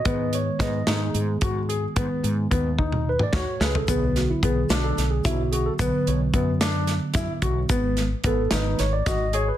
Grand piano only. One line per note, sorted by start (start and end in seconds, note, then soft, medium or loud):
0.05 0.35 B3 medium
0.60 0.75 B3 medium
0.88 1.17 D#4 medium
1.43 1.58 F#4 medium
1.69 1.84 G#4 medium
1.96 2.26 B3 medium
2.51 2.66 B3 medium
2.78 3.08 D#4 medium
3.33 3.48 F#4 medium
3.60 3.75 G#4 medium
3.89 4.18 B3 medium
4.43 4.58 B3 medium
4.70 5.00 D4 medium
5.25 5.40 E4 medium
5.53 5.68 F#4 medium
5.80 6.10 B3 medium
6.34 6.49 B3 medium
6.61 6.91 D4 medium
7.16 7.31 E4 medium
7.43 7.58 F#4 medium
7.69 8.00 B3 medium
8.25 8.40 B3 medium
8.52 8.82 D#4 medium
9.07 9.22 F#4 medium
9.33 9.49 G#4 medium